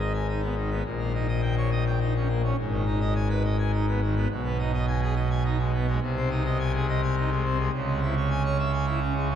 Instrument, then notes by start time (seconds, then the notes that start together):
pipe organ
Already playing: G#1 G#2
0.00 D#5
0.14 G#5
0.29 D#4
0.42 B3
0.57 D#3
0.71 B3
0.84 A#1 A#2
1.00 A#3
1.14 D#4
1.28 D#5
1.42 G5
1.57 C#5
1.71 D#5
1.87 G5
2.01 D#4
2.16 C#4
2.29 A#3
2.44 C#4
2.58 G#1 G#2
2.71 D#3
2.86 D#4
3.01 D#5
3.15 G#5
3.30 B4
3.44 D#5
3.59 G#5
3.73 D#4
3.88 B3
4.02 D#3
4.16 B3
4.30 B1 B2
4.45 B3
4.59 D#4
4.73 D#5
4.88 G#5
5.02 G#4
5.16 D#5
5.31 G#5
5.44 D#4
5.59 G#3
5.74 B3
5.88 G#3
6.01 C2 C3
6.16 C4
6.30 D#4
6.45 D#5
6.59 G#5
6.74 G#4
6.89 D#5
7.03 G#5
7.17 D#4
7.32 G#3
7.45 C4
7.59 G#3
7.74 C#2 C#3
7.88 G#3
8.02 E4
8.16 C#5
8.30 G#5
8.45 C#5
8.59 E5
8.73 G#5
8.87 E4
9.01 C#4
9.15 G#3
9.30 C#4